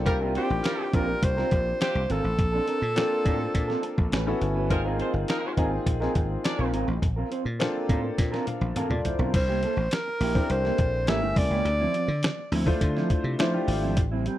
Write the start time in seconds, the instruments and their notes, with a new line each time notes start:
0.06 slap bass C2, horn section G3 F4 A#4, grand piano A#3 C4 D4 F4 G4, muted clean electric guitar stroke, kick, closed hi-hat
0.20 grand piano A#3 C4 D4 E4 G4, clean electric guitar C4 F4 A#4
0.28 grand piano F4
0.35 horn section G3 F4 C5, clean electric guitar C4 F4 C5, alto saxophone G4, closed hi-hat
0.49 slap bass A1, muted clean electric guitar stroke
0.63 horn section G3 F4 A#4, snare, closed hi-hat
0.79 muted clean electric guitar stroke
0.93 slap bass A#1, grand piano A#3 C4 D4 F4 G4, clean electric guitar C4 F4 A#4, alto saxophone A#4, kick, closed hi-hat
1.08 muted clean electric guitar stroke
1.22 slap bass C2, alto saxophone C5, muted clean electric guitar stroke, kick, closed hi-hat
1.37 grand piano A#3 C4 D4 F4 G4, clean electric guitar C4 F4 A#4, snare
1.51 slap bass A#1, muted clean electric guitar stroke, kick, closed hi-hat
1.66 muted clean electric guitar stroke
1.80 horn section C3 A#3 G4, alto saxophone C5, muted clean electric guitar stroke, snare, closed hi-hat
1.95 slap bass C2, muted clean electric guitar stroke
2.09 slap bass G#1, clean electric guitar C4 F4 A#4, alto saxophone A4, closed hi-hat
2.24 slap bass A1, muted clean electric guitar stroke
2.38 slap bass A#1, muted clean electric guitar stroke, kick, closed hi-hat
2.52 clean electric guitar C4 D4 A4
2.67 clean electric guitar C4 D4 A#4, closed hi-hat
2.81 slap bass A#2, muted clean electric guitar stroke
2.96 grand piano A#3 C4 D4 F4 A4, snare, closed hi-hat
3.11 muted clean electric guitar stroke
3.24 slap bass A2, clean electric guitar C4 D4 A4, kick, closed hi-hat
3.39 muted clean electric guitar stroke
3.54 slap bass A#2, muted clean electric guitar stroke, kick, closed hi-hat
3.68 clean electric guitar C4 D4 A4, snare
3.83 muted clean electric guitar stroke, closed hi-hat
3.98 slap bass A#1, muted clean electric guitar stroke, kick
4.12 slap bass A1, clean electric guitar C#4 F#4 B4, snare, closed hi-hat
4.27 grand piano B3 C#4 E4 F#4 A4, muted clean electric guitar stroke
4.41 slap bass G1, muted clean electric guitar stroke, closed hi-hat
4.55 clean electric guitar C#4 F#4 B4
4.70 slap bass G#1, horn section F3 D#4 A#4, grand piano A#3 C4 D#4 F4 G#4, muted clean electric guitar stroke, kick, closed hi-hat
4.84 grand piano A#3 C4 D#4 F4 G#4, clean electric guitar C4 F4 A#4
4.99 horn section F3 D#4 C5, clean electric guitar C4 F4 C5, closed hi-hat
5.13 slap bass G1, muted clean electric guitar stroke
5.28 horn section F3 D#4 A#4, snare, closed hi-hat
5.43 muted clean electric guitar stroke
5.57 slap bass G#1, grand piano A#3 C4 D#4 F4 G#4, clean electric guitar C4 F4 A#4, kick, closed hi-hat
5.71 muted clean electric guitar stroke
5.86 slap bass A#1, muted clean electric guitar stroke, kick, closed hi-hat
6.00 grand piano A#3 C4 D#4 F4 G#4, clean electric guitar C4 F4 A#4, snare
6.15 slap bass G#1, muted clean electric guitar stroke, kick, closed hi-hat
6.30 muted clean electric guitar stroke
6.44 horn section D4 A#4 D5, muted clean electric guitar stroke, snare, closed hi-hat
6.58 slap bass A#1, clean electric guitar C4 F4 A#4
6.73 slap bass G#1, clean electric guitar C4 F4 A#4, closed hi-hat
6.88 slap bass A1, muted clean electric guitar stroke
7.02 slap bass A#1, muted clean electric guitar stroke, kick, closed hi-hat
7.16 clean electric guitar C4 F4 A#4
7.31 clean electric guitar C4 F4 C5, closed hi-hat
7.45 slap bass A#2, muted clean electric guitar stroke
7.59 grand piano A#3 C4 D4 F4 A4, snare, closed hi-hat
7.74 muted clean electric guitar stroke
7.89 slap bass A2, clean electric guitar C4 F4 A#4, kick, closed hi-hat
8.03 muted clean electric guitar stroke
8.18 slap bass A#2, muted clean electric guitar stroke, kick, snare, closed hi-hat
8.32 clean electric guitar C4 F4 A#4, snare
8.47 grand piano F5, muted clean electric guitar stroke, closed hi-hat, high tom
8.61 slap bass A#1, muted clean electric guitar stroke, high tom
8.75 clean electric guitar C4 F4 A#4, grand piano A4 F5 A5, closed hi-hat, mid tom
8.90 slap bass A#2, grand piano F4 D5, muted clean electric guitar stroke, mid tom
9.05 grand piano E4 C5, muted clean electric guitar stroke, closed hi-hat, floor tom
9.19 slap bass B1, clean electric guitar C4 F4 A#4, grand piano D4 A#4, floor tom
9.34 slap bass C2, alto saxophone C5, muted clean electric guitar stroke, kick, closed hi-hat, crash
9.48 clean electric guitar A#3 E4 G4
9.63 clean electric guitar A#3 E4 A4, closed hi-hat
9.77 slap bass A1, muted clean electric guitar stroke
9.91 alto saxophone A#4, snare, closed hi-hat
10.06 muted clean electric guitar stroke
10.20 slap bass A#1, clean electric guitar A#3 E4 G4, open hi-hat
10.35 grand piano C4 D4 E4 G4 A4, muted clean electric guitar stroke, kick
10.42 grand piano A#4
10.50 slap bass C2, alto saxophone C5, muted clean electric guitar stroke, closed hi-hat
10.64 clean electric guitar A#3 E4 G4, snare
10.78 slap bass A#1, muted clean electric guitar stroke, kick, closed hi-hat
10.93 muted clean electric guitar stroke
11.07 slap bass A1, grand piano A3 C#4 E4 G4 A#4, clean electric guitar A#3 C#4 G4, alto saxophone E5, snare, closed hi-hat
11.21 slap bass G1, grand piano A3 C#4 E4 G4 A#4, muted clean electric guitar stroke
11.36 slap bass C2, alto saxophone D5, muted clean electric guitar stroke, kick, open hi-hat
11.50 slap bass C#2, clean electric guitar A#3 C#4 G4
11.65 slap bass D2, muted clean electric guitar stroke, closed hi-hat
11.80 clean electric guitar F3 C4 E4
11.94 clean electric guitar F3 C4 F4, closed hi-hat
12.08 slap bass D3, muted clean electric guitar stroke
12.23 snare, closed hi-hat
12.38 muted clean electric guitar stroke
12.52 slap bass D2, clean electric guitar F3 C4 E4, open hi-hat
12.66 grand piano A3 D4 E4 F4 C5, muted clean electric guitar stroke, kick
12.81 slap bass D3, muted clean electric guitar stroke, kick, closed hi-hat
12.96 clean electric guitar F3 C4 E4, snare
13.10 muted clean electric guitar stroke, kick, closed hi-hat
13.24 slap bass C3, muted clean electric guitar stroke
13.39 clean electric guitar F3 C4 E4, grand piano A3 D4 E4 F4 C5, snare, closed hi-hat
13.53 grand piano A3 D4 E4 F4 G4, muted clean electric guitar stroke
13.68 slap bass G#1, muted clean electric guitar stroke, open hi-hat
13.83 clean electric guitar F3 C4 E4
13.97 slap bass A1, muted clean electric guitar stroke, kick, closed hi-hat
14.11 clean electric guitar G3 C4 E4
14.26 clean electric guitar G3 C4 G4, closed hi-hat